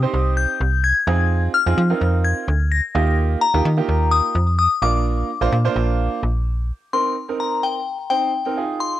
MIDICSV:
0, 0, Header, 1, 4, 480
1, 0, Start_track
1, 0, Key_signature, -3, "minor"
1, 0, Tempo, 468750
1, 1337, Time_signature, 4, 2, 24, 8
1, 9215, End_track
2, 0, Start_track
2, 0, Title_t, "Synth bell"
2, 0, Program_c, 0, 98
2, 0, Note_on_c, 0, 87, 89
2, 337, Note_off_c, 0, 87, 0
2, 379, Note_on_c, 0, 91, 105
2, 859, Note_on_c, 0, 92, 108
2, 873, Note_off_c, 0, 91, 0
2, 1305, Note_off_c, 0, 92, 0
2, 1577, Note_on_c, 0, 89, 89
2, 2298, Note_on_c, 0, 92, 104
2, 2319, Note_off_c, 0, 89, 0
2, 2780, Note_on_c, 0, 94, 98
2, 2792, Note_off_c, 0, 92, 0
2, 3225, Note_off_c, 0, 94, 0
2, 3496, Note_on_c, 0, 82, 99
2, 4213, Note_on_c, 0, 87, 113
2, 4238, Note_off_c, 0, 82, 0
2, 4684, Note_off_c, 0, 87, 0
2, 4697, Note_on_c, 0, 87, 111
2, 4938, Note_on_c, 0, 86, 101
2, 4944, Note_off_c, 0, 87, 0
2, 6577, Note_off_c, 0, 86, 0
2, 7099, Note_on_c, 0, 84, 102
2, 7577, Note_on_c, 0, 82, 87
2, 7593, Note_off_c, 0, 84, 0
2, 7815, Note_on_c, 0, 79, 84
2, 7825, Note_off_c, 0, 82, 0
2, 8282, Note_off_c, 0, 79, 0
2, 8294, Note_on_c, 0, 79, 75
2, 8742, Note_off_c, 0, 79, 0
2, 9015, Note_on_c, 0, 84, 102
2, 9215, Note_off_c, 0, 84, 0
2, 9215, End_track
3, 0, Start_track
3, 0, Title_t, "Grand piano"
3, 0, Program_c, 1, 0
3, 25, Note_on_c, 1, 60, 81
3, 28, Note_on_c, 1, 63, 77
3, 29, Note_on_c, 1, 67, 77
3, 31, Note_on_c, 1, 72, 87
3, 587, Note_off_c, 1, 60, 0
3, 588, Note_off_c, 1, 63, 0
3, 588, Note_off_c, 1, 67, 0
3, 589, Note_off_c, 1, 72, 0
3, 1099, Note_on_c, 1, 60, 83
3, 1102, Note_on_c, 1, 63, 74
3, 1103, Note_on_c, 1, 65, 76
3, 1104, Note_on_c, 1, 68, 92
3, 1578, Note_off_c, 1, 60, 0
3, 1580, Note_off_c, 1, 63, 0
3, 1580, Note_off_c, 1, 65, 0
3, 1581, Note_off_c, 1, 68, 0
3, 1703, Note_on_c, 1, 60, 81
3, 1706, Note_on_c, 1, 63, 75
3, 1706, Note_on_c, 1, 65, 73
3, 1708, Note_on_c, 1, 68, 88
3, 1840, Note_off_c, 1, 60, 0
3, 1841, Note_off_c, 1, 63, 0
3, 1841, Note_off_c, 1, 65, 0
3, 1842, Note_off_c, 1, 68, 0
3, 1945, Note_on_c, 1, 60, 82
3, 1947, Note_on_c, 1, 63, 72
3, 1948, Note_on_c, 1, 65, 76
3, 1950, Note_on_c, 1, 70, 90
3, 2506, Note_off_c, 1, 60, 0
3, 2507, Note_off_c, 1, 63, 0
3, 2508, Note_off_c, 1, 65, 0
3, 2509, Note_off_c, 1, 70, 0
3, 3016, Note_on_c, 1, 58, 82
3, 3018, Note_on_c, 1, 63, 78
3, 3019, Note_on_c, 1, 65, 74
3, 3020, Note_on_c, 1, 67, 86
3, 3497, Note_off_c, 1, 58, 0
3, 3498, Note_off_c, 1, 63, 0
3, 3498, Note_off_c, 1, 65, 0
3, 3499, Note_off_c, 1, 67, 0
3, 3624, Note_on_c, 1, 58, 78
3, 3625, Note_on_c, 1, 63, 74
3, 3626, Note_on_c, 1, 65, 72
3, 3628, Note_on_c, 1, 67, 92
3, 3760, Note_off_c, 1, 58, 0
3, 3761, Note_off_c, 1, 63, 0
3, 3761, Note_off_c, 1, 65, 0
3, 3762, Note_off_c, 1, 67, 0
3, 3863, Note_on_c, 1, 58, 85
3, 3865, Note_on_c, 1, 63, 73
3, 3866, Note_on_c, 1, 65, 75
3, 3868, Note_on_c, 1, 67, 89
3, 4425, Note_off_c, 1, 58, 0
3, 4426, Note_off_c, 1, 63, 0
3, 4427, Note_off_c, 1, 65, 0
3, 4428, Note_off_c, 1, 67, 0
3, 4935, Note_on_c, 1, 58, 85
3, 4937, Note_on_c, 1, 62, 73
3, 4939, Note_on_c, 1, 65, 79
3, 4940, Note_on_c, 1, 70, 92
3, 5416, Note_off_c, 1, 58, 0
3, 5417, Note_off_c, 1, 62, 0
3, 5418, Note_off_c, 1, 65, 0
3, 5419, Note_off_c, 1, 70, 0
3, 5541, Note_on_c, 1, 58, 94
3, 5543, Note_on_c, 1, 62, 87
3, 5545, Note_on_c, 1, 65, 90
3, 5547, Note_on_c, 1, 72, 101
3, 5679, Note_off_c, 1, 58, 0
3, 5680, Note_off_c, 1, 62, 0
3, 5681, Note_off_c, 1, 65, 0
3, 5682, Note_off_c, 1, 72, 0
3, 5783, Note_on_c, 1, 58, 96
3, 5785, Note_on_c, 1, 62, 90
3, 5787, Note_on_c, 1, 65, 88
3, 5788, Note_on_c, 1, 72, 109
3, 6345, Note_off_c, 1, 58, 0
3, 6347, Note_off_c, 1, 62, 0
3, 6347, Note_off_c, 1, 65, 0
3, 6348, Note_off_c, 1, 72, 0
3, 7098, Note_on_c, 1, 60, 73
3, 7099, Note_on_c, 1, 63, 67
3, 7102, Note_on_c, 1, 70, 78
3, 7312, Note_off_c, 1, 60, 0
3, 7313, Note_off_c, 1, 63, 0
3, 7314, Note_off_c, 1, 70, 0
3, 7463, Note_on_c, 1, 60, 68
3, 7465, Note_on_c, 1, 63, 63
3, 7467, Note_on_c, 1, 70, 80
3, 7959, Note_off_c, 1, 60, 0
3, 7960, Note_off_c, 1, 63, 0
3, 7961, Note_off_c, 1, 70, 0
3, 8295, Note_on_c, 1, 60, 66
3, 8297, Note_on_c, 1, 63, 60
3, 8300, Note_on_c, 1, 72, 77
3, 8510, Note_off_c, 1, 60, 0
3, 8512, Note_off_c, 1, 63, 0
3, 8513, Note_off_c, 1, 72, 0
3, 8661, Note_on_c, 1, 60, 72
3, 8664, Note_on_c, 1, 63, 66
3, 8667, Note_on_c, 1, 70, 76
3, 8762, Note_off_c, 1, 63, 0
3, 8776, Note_off_c, 1, 60, 0
3, 8777, Note_on_c, 1, 63, 71
3, 8779, Note_off_c, 1, 70, 0
3, 8779, Note_on_c, 1, 65, 67
3, 8781, Note_on_c, 1, 68, 78
3, 9215, Note_off_c, 1, 63, 0
3, 9215, Note_off_c, 1, 65, 0
3, 9215, Note_off_c, 1, 68, 0
3, 9215, End_track
4, 0, Start_track
4, 0, Title_t, "FM bass"
4, 0, Program_c, 2, 39
4, 140, Note_on_c, 2, 36, 92
4, 473, Note_off_c, 2, 36, 0
4, 620, Note_on_c, 2, 36, 90
4, 953, Note_off_c, 2, 36, 0
4, 1097, Note_on_c, 2, 41, 104
4, 1520, Note_off_c, 2, 41, 0
4, 1704, Note_on_c, 2, 41, 88
4, 1783, Note_off_c, 2, 41, 0
4, 1819, Note_on_c, 2, 53, 100
4, 1985, Note_off_c, 2, 53, 0
4, 2060, Note_on_c, 2, 41, 93
4, 2393, Note_off_c, 2, 41, 0
4, 2538, Note_on_c, 2, 38, 95
4, 2872, Note_off_c, 2, 38, 0
4, 3020, Note_on_c, 2, 39, 103
4, 3442, Note_off_c, 2, 39, 0
4, 3626, Note_on_c, 2, 39, 90
4, 3704, Note_off_c, 2, 39, 0
4, 3740, Note_on_c, 2, 51, 97
4, 3906, Note_off_c, 2, 51, 0
4, 3979, Note_on_c, 2, 39, 93
4, 4313, Note_off_c, 2, 39, 0
4, 4455, Note_on_c, 2, 41, 91
4, 4790, Note_off_c, 2, 41, 0
4, 4935, Note_on_c, 2, 34, 101
4, 5359, Note_off_c, 2, 34, 0
4, 5543, Note_on_c, 2, 34, 87
4, 5622, Note_off_c, 2, 34, 0
4, 5655, Note_on_c, 2, 46, 98
4, 5823, Note_off_c, 2, 46, 0
4, 5896, Note_on_c, 2, 34, 101
4, 6231, Note_off_c, 2, 34, 0
4, 6378, Note_on_c, 2, 34, 91
4, 6879, Note_off_c, 2, 34, 0
4, 9215, End_track
0, 0, End_of_file